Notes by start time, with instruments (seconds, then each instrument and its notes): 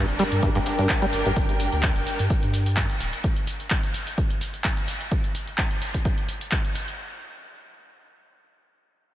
Already playing: string section D4
0.08 sub bass F1, closed hi-hat, cabasa
0.14 string section A#4
0.19 acid bass G3, closed hi-hat, open hi-hat, cabasa
0.32 sub bass G2, open hi-hat, cabasa
0.36 string section G5
0.43 acid bass G2, kick, closed hi-hat, cabasa
0.55 acid bass G2, snare, closed hi-hat, cabasa
0.66 snare, closed hi-hat, open hi-hat, cabasa
0.79 acid bass G2, closed hi-hat, cabasa
0.89 kick, snare, clap, closed hi-hat, cabasa
1.02 acid bass G3, closed hi-hat
1.13 sub bass G1, closed hi-hat, open hi-hat, cabasa
1.26 sub bass G1, acid bass G2, closed hi-hat, cabasa
1.36 sub bass G1, kick, closed hi-hat, cabasa
1.49 closed hi-hat
1.60 open hi-hat, cabasa
1.72 sub bass D2, closed hi-hat, cabasa
1.83 kick, clap, closed hi-hat, cabasa
1.96 sub bass F1, closed hi-hat, cabasa
2.07 open hi-hat, cabasa
2.19 sub bass G2, open hi-hat, cabasa
2.30 kick, closed hi-hat, cabasa
2.43 sub bass G2, closed hi-hat, cabasa
2.54 open hi-hat, cabasa
2.66 open hi-hat, cabasa
2.77 kick, clap, closed hi-hat, cabasa
2.90 closed hi-hat
3.00 sub bass D1, open hi-hat, cabasa
3.13 closed hi-hat, cabasa
3.23 kick, closed hi-hat, cabasa
3.37 closed hi-hat
3.47 open hi-hat, cabasa
3.60 closed hi-hat, cabasa
3.70 kick, clap, closed hi-hat, cabasa
3.83 closed hi-hat, cabasa
3.94 open hi-hat, cabasa
4.07 open hi-hat, cabasa
4.18 kick, closed hi-hat, cabasa
4.29 closed hi-hat, cabasa
4.41 open hi-hat, cabasa
4.54 closed hi-hat, cabasa
4.64 kick, clap, closed hi-hat, cabasa
4.77 closed hi-hat
4.88 open hi-hat, cabasa
5.01 closed hi-hat, cabasa
5.11 kick, closed hi-hat
5.24 closed hi-hat
5.35 open hi-hat
5.47 closed hi-hat
5.58 kick, clap, closed hi-hat
5.71 closed hi-hat
5.82 open hi-hat
5.94 kick, open hi-hat
6.05 kick, closed hi-hat
6.18 closed hi-hat
6.29 open hi-hat
6.41 open hi-hat
6.52 kick, clap, closed hi-hat
6.65 closed hi-hat
6.75 open hi-hat
6.88 closed hi-hat